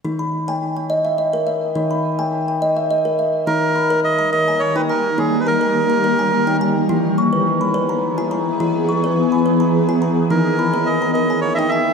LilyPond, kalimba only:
<<
  \new Staff \with { instrumentName = "Kalimba" } { \time 3/4 \tempo 4 = 105 << { r16 ces'''8 aes''8 g''8 fes''16 ees''8 fes''8~ | fes''16 ces'''8 aes''8 g''8 fes''16 ees''8 fes''8~ | fes''16 r16 ces'''8. bes''8 aes''8 g''16 aes''8~ | aes''16 r16 bes''8. bes''8 aes''8 g''16 aes''8~ |
aes''16 r16 des'''8. b''8 bes''8 gis''16 bes''8~ | bes''16 r16 des'''8. b''8 bes''8 gis''16 bes''8~ | bes''16 r16 ces'''8. bes''8 aes''8 g''16 aes''8 | } \\ { ees'8 r16 g''8 r16 ees''8 r16 bes'8 r16 | ees'8 r16 g''8 r16 ees''8 r16 bes'8 r16 | ees'8 r16 bes'8 r16 bes'8 r16 ees'8 r16 | ees'8 r16 bes'8 r16 bes'8 r16 ees'8 r16 |
e'8 r16 b'8 r16 b'8 r16 e'8 r16 | e'8 r16 b'8 r16 b'8 r16 e'8 r16 | ees'8 r16 bes'8 r16 bes'8 r16 ees'8 r16 | } >> }
  \new Staff \with { instrumentName = "Kalimba" } { \clef bass \time 3/4 ees2. | ees2. | ees2. | ees2. |
e2. | e2. | ees2. | }
>>